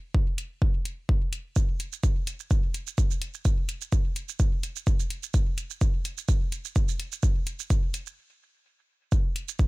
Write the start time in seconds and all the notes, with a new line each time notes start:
0.15 kick
0.38 closed hi-hat
0.62 kick
0.85 closed hi-hat
1.09 kick
1.33 closed hi-hat
1.56 kick, shaker
1.80 closed hi-hat, shaker
1.93 shaker
2.04 kick, shaker
2.27 closed hi-hat, shaker
2.40 shaker
2.51 kick, shaker
2.74 closed hi-hat, shaker
2.87 shaker
2.98 kick, shaker
3.11 shaker
3.22 closed hi-hat
3.34 shaker
3.45 kick, shaker
3.69 closed hi-hat, shaker
3.82 shaker
3.92 kick, shaker
4.16 closed hi-hat, shaker
4.29 shaker
4.40 kick, shaker
4.63 closed hi-hat, shaker
4.76 shaker
4.87 kick, shaker
5.00 shaker
5.10 closed hi-hat
5.23 shaker
5.34 kick, shaker
5.58 closed hi-hat, shaker
5.70 shaker
5.81 kick, shaker
6.05 closed hi-hat, shaker
6.18 shaker
6.29 kick, shaker
6.52 closed hi-hat, shaker
6.65 shaker
6.76 kick, shaker
6.89 shaker
7.00 closed hi-hat
7.12 shaker
7.23 kick, shaker
7.47 closed hi-hat, shaker
7.60 shaker
7.70 kick, shaker
7.94 closed hi-hat, shaker
8.07 shaker
9.12 kick, shaker
9.36 closed hi-hat
9.49 shaker
9.59 kick, shaker